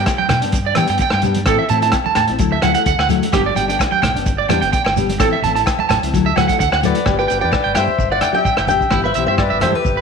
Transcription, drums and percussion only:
0.06 kick medium
0.06 cross-stick medium
0.06 closed hi-hat medium
0.06 low agogo medium
0.06 shekere medium
0.19 high conga medium
0.29 cross-stick medium
0.29 closed hi-hat soft
0.29 low conga medium
0.29 low agogo medium
0.29 shekere medium
0.42 closed hi-hat medium
0.52 kick medium
0.52 closed hi-hat medium
0.52 shekere medium
0.75 cross-stick medium
0.75 closed hi-hat soft
0.75 high conga medium
0.75 low agogo medium
0.75 shekere medium
0.87 closed hi-hat medium
0.87 shekere soft
0.98 kick medium
0.98 closed hi-hat medium
0.98 shekere medium
1.10 cross-stick medium
1.10 low agogo medium
1.22 closed hi-hat soft
1.22 low conga medium
1.22 shekere medium
1.34 closed hi-hat medium
1.34 high conga medium
1.34 shekere soft
1.46 kick medium
1.46 cross-stick medium
1.46 closed hi-hat soft
1.46 low agogo medium
1.46 shekere medium
1.69 closed hi-hat soft
1.69 shekere medium
1.82 closed hi-hat medium
1.82 shekere soft
1.92 kick medium
1.92 cross-stick medium
1.92 closed hi-hat medium
1.92 low agogo medium
1.92 shekere medium
2.06 high conga medium
2.15 cross-stick medium
2.15 closed hi-hat medium
2.15 low conga medium
2.15 low agogo medium
2.15 shekere medium
2.28 closed hi-hat soft
2.39 kick medium
2.39 closed hi-hat soft
2.39 shekere medium
2.62 cross-stick medium
2.62 closed hi-hat soft
2.62 high conga medium
2.62 low agogo medium
2.62 shekere medium
2.75 closed hi-hat soft
2.75 shekere soft
2.86 kick medium
2.86 closed hi-hat soft
2.86 shekere medium
2.99 cross-stick medium
2.99 low agogo medium
3.09 closed hi-hat soft
3.09 low conga medium
3.09 shekere medium
3.22 closed hi-hat medium
3.22 high conga medium
3.22 shekere soft
3.33 kick medium
3.33 cross-stick medium
3.33 closed hi-hat soft
3.33 low agogo medium
3.33 shekere medium
3.56 closed hi-hat soft
3.56 shekere medium
3.69 closed hi-hat medium
3.69 shekere soft
3.79 kick medium
3.79 cross-stick medium
3.79 closed hi-hat soft
3.79 low agogo medium
3.79 shekere medium
3.92 high conga medium
4.02 cross-stick medium
4.02 closed hi-hat medium
4.02 low conga medium
4.02 low agogo medium
4.02 shekere medium
4.16 closed hi-hat soft
4.26 kick medium
4.26 closed hi-hat soft
4.26 shekere medium
4.49 cross-stick medium
4.49 closed hi-hat soft
4.49 high conga medium
4.49 low agogo medium
4.49 shekere medium
4.62 closed hi-hat medium
4.62 shekere soft
4.73 kick medium
4.73 closed hi-hat medium
4.73 shekere medium
4.84 cross-stick medium
4.84 low agogo medium
4.96 closed hi-hat soft
4.96 low conga medium
4.96 shekere loud
5.09 closed hi-hat medium
5.09 high conga medium
5.09 shekere soft
5.19 kick medium
5.19 cross-stick medium
5.19 closed hi-hat medium
5.19 low agogo medium
5.19 shekere medium
5.44 closed hi-hat soft
5.44 shekere loud
5.56 closed hi-hat medium
5.56 shekere soft
5.66 kick medium
5.66 cross-stick medium
5.66 closed hi-hat medium
5.66 low agogo medium
5.66 shekere medium
5.79 high conga medium
5.89 cross-stick medium
5.89 closed hi-hat medium
5.89 high conga medium
5.89 low conga medium
5.89 low agogo medium
5.89 shekere medium
6.03 closed hi-hat soft
6.03 shekere soft
6.14 kick medium
6.14 closed hi-hat soft
6.14 shekere medium
6.36 cross-stick medium
6.36 closed hi-hat soft
6.36 high conga medium
6.36 low agogo medium
6.36 shekere medium
6.49 kick medium
6.49 closed hi-hat medium
6.49 shekere soft
6.60 kick medium
6.60 closed hi-hat medium
6.60 shekere medium
6.72 cross-stick medium
6.72 low agogo medium
6.83 closed hi-hat soft
6.83 low conga medium
6.83 shekere medium
6.95 closed hi-hat soft
6.95 high conga medium
6.95 shekere soft
7.06 kick medium
7.06 cross-stick medium
7.06 low agogo medium
7.06 shekere medium
7.20 shekere soft
7.30 closed hi-hat soft
7.30 shekere medium
7.51 kick medium
7.51 cross-stick medium
7.51 low agogo medium
7.51 shekere medium
7.75 cross-stick medium
7.75 closed hi-hat soft
7.75 low agogo medium
7.75 shekere medium
7.88 high conga medium
7.99 kick medium
7.99 shekere medium
8.21 cross-stick medium
8.21 closed hi-hat soft
8.21 low conga medium
8.21 low agogo medium
8.21 shekere medium
8.33 high conga medium
8.33 shekere soft
8.45 kick medium
8.45 shekere medium
8.57 cross-stick medium
8.57 low agogo medium
8.57 shekere soft
8.67 closed hi-hat soft
8.67 high conga medium
8.67 low conga medium
8.67 shekere medium
8.81 kick medium
8.81 shekere soft
8.91 kick medium
8.91 cross-stick medium
8.91 low agogo medium
8.91 shekere medium
9.04 shekere soft
9.14 closed hi-hat soft
9.14 shekere medium
9.38 kick medium
9.38 cross-stick medium
9.38 low agogo medium
9.38 shekere medium
9.60 cross-stick medium
9.60 closed hi-hat soft
9.60 low conga medium
9.60 low agogo medium
9.72 high conga medium
9.85 kick medium
9.85 shekere medium

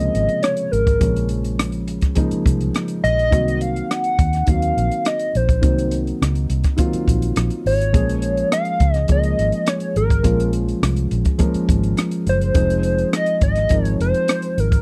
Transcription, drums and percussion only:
0.00 closed hi-hat medium
0.15 closed hi-hat medium
0.29 closed hi-hat soft
0.43 cross-stick medium
0.43 closed hi-hat medium
0.57 closed hi-hat soft
0.73 closed hi-hat medium
0.87 kick medium
0.87 closed hi-hat soft
1.01 kick loud
1.01 closed hi-hat medium
1.16 closed hi-hat soft
1.29 closed hi-hat medium
1.44 closed hi-hat soft
1.59 cross-stick loud
1.59 closed hi-hat medium
1.72 closed hi-hat soft
1.88 closed hi-hat medium
2.01 kick medium
2.01 cross-stick soft
2.01 closed hi-hat soft
2.15 kick medium
2.15 closed hi-hat medium
2.31 closed hi-hat medium
2.46 kick medium
2.46 closed hi-hat medium
2.61 closed hi-hat soft
2.74 cross-stick medium
2.74 closed hi-hat medium
2.88 closed hi-hat soft
3.05 closed hi-hat medium
3.19 closed hi-hat soft
3.32 kick loud
3.32 closed hi-hat medium
3.48 closed hi-hat medium
3.61 closed hi-hat medium
3.76 closed hi-hat soft
3.91 cross-stick medium
3.91 closed hi-hat medium
4.04 closed hi-hat soft
4.19 kick medium
4.19 closed hi-hat medium
4.33 cross-stick soft
4.33 closed hi-hat soft
4.47 kick medium
4.47 closed hi-hat medium
4.62 closed hi-hat soft
4.78 closed hi-hat medium
4.91 closed hi-hat soft
5.05 cross-stick medium
5.05 closed hi-hat medium
5.19 closed hi-hat soft
5.35 closed hi-hat medium
5.49 kick medium
5.49 closed hi-hat soft
5.63 kick loud
5.63 closed hi-hat medium
5.78 closed hi-hat medium
5.91 closed hi-hat medium
6.07 closed hi-hat soft
6.22 cross-stick medium
6.22 closed hi-hat medium
6.35 closed hi-hat soft
6.50 closed hi-hat medium
6.64 kick medium
6.64 cross-stick soft
6.64 closed hi-hat soft
6.78 kick medium
6.78 closed hi-hat medium
6.93 closed hi-hat medium
7.08 kick medium
7.08 closed hi-hat medium
7.22 closed hi-hat soft
7.36 cross-stick medium
7.36 closed hi-hat medium
7.50 closed hi-hat soft
7.66 open hi-hat medium
7.81 closed hi-hat soft
7.94 kick loud
7.94 closed hi-hat medium
8.09 closed hi-hat medium
8.22 closed hi-hat medium
8.37 closed hi-hat soft
8.52 cross-stick loud
8.52 closed hi-hat medium
8.65 closed hi-hat soft
8.80 kick medium
8.80 closed hi-hat medium
8.94 cross-stick soft
8.94 closed hi-hat soft
9.08 kick medium
9.08 closed hi-hat medium
9.23 closed hi-hat medium
9.39 closed hi-hat medium
9.52 closed hi-hat soft
9.66 cross-stick loud
9.66 closed hi-hat medium
9.80 closed hi-hat soft
9.96 closed hi-hat medium
10.10 kick medium
10.10 closed hi-hat soft
10.24 kick medium
10.24 closed hi-hat medium
10.40 closed hi-hat medium
10.53 closed hi-hat medium
10.68 closed hi-hat soft
10.83 cross-stick loud
10.83 closed hi-hat medium
10.96 closed hi-hat soft
11.11 closed hi-hat medium
11.25 kick medium
11.25 closed hi-hat soft
11.39 kick medium
11.39 closed hi-hat medium
11.54 closed hi-hat soft
11.69 kick medium
11.69 closed hi-hat medium
11.83 closed hi-hat soft
11.97 cross-stick medium
11.97 closed hi-hat medium
12.11 closed hi-hat soft
12.27 closed hi-hat medium
12.41 closed hi-hat soft
12.55 kick loud
12.55 closed hi-hat medium
12.70 closed hi-hat medium
12.83 closed hi-hat medium
12.98 closed hi-hat soft
13.13 cross-stick loud
13.13 closed hi-hat medium
13.26 closed hi-hat soft
13.41 kick medium
13.41 closed hi-hat medium
13.55 cross-stick soft
13.55 closed hi-hat soft
13.69 kick medium
13.69 closed hi-hat medium
13.85 closed hi-hat medium
14.01 closed hi-hat medium
14.14 closed hi-hat soft
14.28 cross-stick medium
14.28 closed hi-hat medium
14.42 closed hi-hat soft
14.58 closed hi-hat medium
14.72 kick medium
14.72 closed hi-hat soft

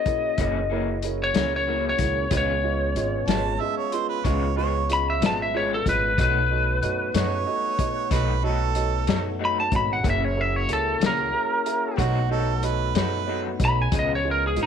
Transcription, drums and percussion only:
0.06 kick medium
0.06 closed hi-hat medium
0.38 kick medium
0.38 closed hi-hat medium
1.02 closed hi-hat medium
1.34 snare loud
1.34 closed hi-hat medium
1.99 kick medium
1.99 snare soft
1.99 closed hi-hat medium
2.31 kick medium
2.31 closed hi-hat medium
2.96 closed hi-hat medium
3.28 snare loud
3.28 closed hi-hat medium
3.92 closed hi-hat medium
4.25 kick medium
4.25 closed hi-hat medium
4.90 closed hi-hat medium
5.22 snare loud
5.22 closed hi-hat medium
5.86 kick medium
5.86 snare soft
5.86 closed hi-hat medium
6.18 kick medium
6.18 closed hi-hat medium
6.83 closed hi-hat medium
7.15 snare loud
7.15 closed hi-hat medium
7.79 kick medium
7.79 closed hi-hat medium
8.11 kick medium
8.11 closed hi-hat medium
8.75 closed hi-hat medium
9.07 snare loud
9.07 closed hi-hat medium
9.72 kick medium
9.72 closed hi-hat medium
10.04 kick loud
10.04 closed hi-hat medium
10.69 closed hi-hat medium
11.01 snare loud
11.01 closed hi-hat medium
11.66 closed hi-hat medium
11.98 kick medium
11.98 closed hi-hat medium
12.63 closed hi-hat medium
12.95 snare loud
12.95 closed hi-hat medium
13.60 kick medium
13.60 snare soft
13.60 closed hi-hat medium
13.92 kick loud
13.92 closed hi-hat medium
14.56 closed hi-hat medium

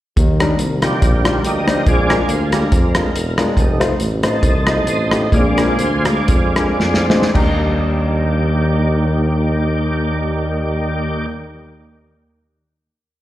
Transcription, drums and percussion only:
0.17 kick medium
0.17 closed hi-hat medium
0.40 cross-stick medium
0.40 closed hi-hat medium
0.59 closed hi-hat medium
0.82 cross-stick medium
0.82 closed hi-hat medium
1.02 kick loud
1.02 closed hi-hat medium
1.25 cross-stick loud
1.25 closed hi-hat medium
1.45 closed hi-hat medium
1.68 cross-stick medium
1.68 closed hi-hat medium
1.86 kick loud
1.86 closed hi-hat medium
2.10 cross-stick medium
2.10 closed hi-hat medium
2.29 closed hi-hat medium
2.52 cross-stick medium
2.52 closed hi-hat medium
2.72 kick medium
2.72 closed hi-hat medium
2.95 cross-stick loud
2.95 closed hi-hat medium
3.16 closed hi-hat medium
3.38 cross-stick loud
3.38 closed hi-hat medium
3.57 kick medium
3.57 closed hi-hat medium
3.81 cross-stick medium
3.81 closed hi-hat medium
4.00 closed hi-hat medium
4.23 cross-stick medium
4.23 closed hi-hat medium
4.43 kick loud
4.43 closed hi-hat medium
4.67 cross-stick loud
4.67 closed hi-hat medium
4.87 closed hi-hat medium
5.11 cross-stick loud
5.11 closed hi-hat medium
5.32 kick loud
5.32 closed hi-hat medium
5.58 cross-stick medium
5.58 closed hi-hat medium
5.79 closed hi-hat medium
6.05 cross-stick medium
6.05 closed hi-hat medium
6.28 kick loud
6.28 closed hi-hat medium
6.56 cross-stick medium
6.56 closed hi-hat medium
6.80 snare soft
6.94 snare medium
7.10 snare medium
7.22 snare medium
7.35 kick medium
7.35 crash medium

